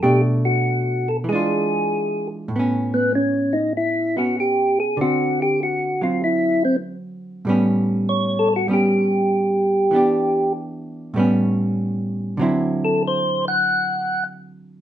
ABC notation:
X:1
M:4/4
L:1/16
Q:"Swing" 1/4=97
K:Amix
V:1 name="Tonewheel organ"
G2 F4 A2 ^G6 z2 | z2 B,2 C2 ^D2 E2 F2 G2 ^G2 | F2 G2 F2 =F2 E2 =C2 z4 | z4 c2 A F G8- |
G4 z12 | z2 A2 =c2 f6 z4 |]
V:2 name="Hollow-body jazz guitar"
[B,,A,D]8 [E,^G,D=F]8 | [A,,B,C]8- [A,,B,C]2 [B,C]6 | [D,=C]6 [F,C]8- [F,C]2 | [A,,G,B,C]8 [G,B,C]8 |
[E,B,DG]8 [A,,G,B,C]8 | [D,F,=CE]16 |]